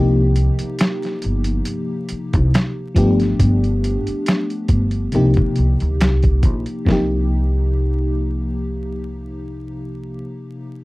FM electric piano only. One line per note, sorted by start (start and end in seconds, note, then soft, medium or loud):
0.00 2.91 C3 medium
0.00 2.91 F3 medium
0.00 2.92 A#3 medium
0.00 2.93 D#4 medium
0.00 2.93 G4 medium
2.95 5.08 F3 medium
2.95 5.09 A3 medium
2.95 5.10 B3 medium
2.95 5.10 D4 medium
2.95 5.10 G4 medium
5.12 6.83 C3 medium
5.12 6.84 F3 medium
5.12 6.84 A#3 medium
5.12 6.84 D#4 medium
5.12 6.85 G4 medium
6.85 10.19 C3 medium
6.85 10.20 F3 medium
6.85 10.22 A#3 medium
6.90 10.24 D#4 medium
6.90 10.26 G4 medium